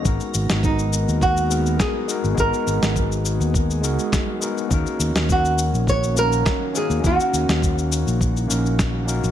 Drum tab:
SH |xxxxxxxxxxxxx-xx|xxxxxxxxxxxxx-xx|xxxxxxxxxxxxx-xx|xxxxxxxxxxxxx-xx|
SD |---o--------o---|---o--------o---|---o--------o---|---o--------o---|
BD |o---o---o---o---|o---o---o---o---|o---o---o---o---|o---o---o---o---|